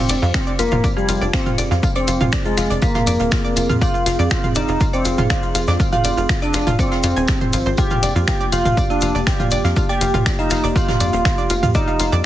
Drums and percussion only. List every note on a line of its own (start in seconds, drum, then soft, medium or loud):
0.09 snare soft
0.09 closed hi-hat loud
0.09 tambourine medium
0.09 shaker medium
0.23 shaker soft
0.34 finger snap loud
0.34 kick loud
0.34 snare loud
0.34 tambourine medium
0.34 shaker medium
0.47 shaker soft
0.59 closed hi-hat loud
0.59 tambourine medium
0.59 shaker loud
0.71 mid tom medium
0.71 shaker soft
0.84 kick loud
0.84 tambourine medium
0.84 shaker medium
0.98 shaker soft
1.09 closed hi-hat loud
1.09 tambourine medium
1.09 shaker loud
1.22 shaker soft
1.33 finger snap loud
1.33 kick loud
1.33 snare loud
1.33 tambourine medium
1.33 shaker medium
1.46 mid tom medium
1.46 shaker soft
1.58 closed hi-hat loud
1.58 tambourine medium
1.58 shaker loud
1.71 snare soft
1.71 shaker soft
1.83 kick loud
1.83 tambourine medium
1.83 shaker soft
1.95 closed hi-hat soft
1.95 shaker soft
2.07 closed hi-hat loud
2.07 tambourine medium
2.07 shaker medium
2.21 mid tom medium
2.21 shaker soft
2.32 finger snap loud
2.32 kick loud
2.32 snare loud
2.32 tambourine medium
2.32 shaker medium
2.45 closed hi-hat soft
2.45 shaker soft
2.57 finger snap soft
2.57 snare medium
2.57 closed hi-hat loud
2.57 tambourine medium
2.57 shaker loud
2.70 closed hi-hat soft
2.70 shaker soft
2.82 kick loud
2.82 tambourine medium
2.82 shaker medium
2.95 snare medium
2.95 mid tom medium
2.95 shaker soft
3.06 closed hi-hat loud
3.06 tambourine medium
3.06 shaker loud
3.19 closed hi-hat soft
3.19 shaker soft
3.31 finger snap loud
3.31 kick loud
3.31 snare loud
3.31 tambourine medium
3.31 shaker medium
3.45 shaker soft
3.56 closed hi-hat loud
3.56 tambourine medium
3.56 shaker loud
3.70 mid tom medium
3.70 shaker soft
3.81 kick loud
3.81 tambourine medium
3.81 shaker medium
3.94 shaker soft
4.06 snare soft
4.06 closed hi-hat loud
4.06 tambourine medium
4.06 shaker loud
4.19 shaker soft
4.30 finger snap loud
4.30 kick loud
4.30 snare loud
4.30 tambourine medium
4.30 shaker medium
4.44 mid tom medium
4.44 shaker soft
4.55 closed hi-hat loud
4.55 tambourine medium
4.55 shaker medium
4.68 shaker soft
4.80 kick loud
4.80 tambourine medium
4.80 shaker medium
4.94 shaker soft
5.05 closed hi-hat loud
5.05 tambourine medium
5.05 shaker medium
5.18 mid tom medium
5.18 shaker soft
5.30 finger snap loud
5.30 kick loud
5.30 snare loud
5.30 tambourine medium
5.30 shaker medium
5.43 shaker soft
5.55 closed hi-hat loud
5.55 tambourine medium
5.55 shaker medium
5.67 snare soft
5.67 shaker soft
5.79 kick loud
5.79 tambourine medium
5.79 shaker medium
5.93 closed hi-hat soft
5.93 mid tom medium
5.93 shaker soft
6.04 closed hi-hat loud
6.04 tambourine medium
6.04 shaker medium
6.17 shaker soft
6.29 finger snap loud
6.29 kick loud
6.29 snare loud
6.29 tambourine medium
6.29 shaker medium
6.42 closed hi-hat soft
6.42 shaker soft
6.54 finger snap soft
6.54 snare medium
6.54 closed hi-hat loud
6.54 tambourine medium
6.54 shaker loud
6.66 closed hi-hat soft
6.66 mid tom medium
6.66 shaker soft
6.79 kick loud
6.79 tambourine medium
6.79 shaker medium
6.91 snare medium
6.91 shaker soft
7.03 closed hi-hat loud
7.03 tambourine medium
7.03 shaker loud
7.16 closed hi-hat soft
7.16 shaker soft
7.28 finger snap loud
7.28 kick loud
7.28 snare loud
7.28 tambourine medium
7.28 shaker medium
7.41 mid tom medium
7.41 shaker soft
7.53 closed hi-hat loud
7.53 tambourine medium
7.53 shaker loud
7.65 shaker soft
7.77 kick loud
7.77 tambourine medium
7.77 shaker medium
7.90 mid tom medium
7.90 shaker soft
8.03 snare soft
8.03 closed hi-hat loud
8.03 tambourine medium
8.03 shaker loud
8.16 shaker soft
8.28 finger snap loud
8.28 kick loud
8.28 snare loud
8.28 tambourine medium
8.28 shaker medium
8.40 shaker soft
8.52 closed hi-hat loud
8.52 tambourine medium
8.52 shaker medium
8.65 mid tom medium
8.65 shaker soft
8.77 kick loud
8.77 tambourine medium
8.77 shaker medium
8.91 shaker soft
9.01 closed hi-hat loud
9.01 tambourine medium
9.01 shaker medium
9.15 shaker soft
9.27 finger snap loud
9.27 kick loud
9.27 snare loud
9.27 tambourine medium
9.27 shaker medium
9.40 mid tom medium
9.40 shaker soft
9.51 closed hi-hat loud
9.51 tambourine medium
9.51 shaker medium
9.64 snare soft
9.64 shaker soft
9.76 kick loud
9.76 tambourine medium
9.76 shaker soft
9.89 closed hi-hat soft
9.89 shaker soft
10.01 closed hi-hat loud
10.01 tambourine medium
10.01 shaker medium
10.14 mid tom loud
10.14 shaker soft
10.26 finger snap loud
10.26 kick loud
10.26 snare loud
10.26 tambourine medium
10.26 shaker medium
10.39 closed hi-hat soft
10.39 shaker soft
10.50 finger snap soft
10.50 snare medium
10.50 closed hi-hat loud
10.50 tambourine medium
10.50 shaker medium
10.64 closed hi-hat soft
10.64 shaker soft
10.76 kick loud
10.76 tambourine medium
10.76 shaker medium
10.88 snare medium
10.88 mid tom loud
10.88 shaker soft
11.00 closed hi-hat loud
11.00 tambourine medium
11.00 shaker medium
11.13 closed hi-hat soft
11.13 shaker soft
11.25 finger snap loud
11.25 kick loud
11.25 snare loud
11.25 tambourine medium
11.25 shaker medium
11.38 shaker soft
11.50 closed hi-hat loud
11.50 tambourine medium
11.50 shaker medium
11.63 mid tom loud
11.63 shaker soft
11.74 kick loud
11.74 tambourine medium
11.74 shaker medium
11.88 shaker soft
12.00 snare soft
12.00 closed hi-hat loud
12.00 tambourine medium
12.00 shaker medium
12.12 shaker soft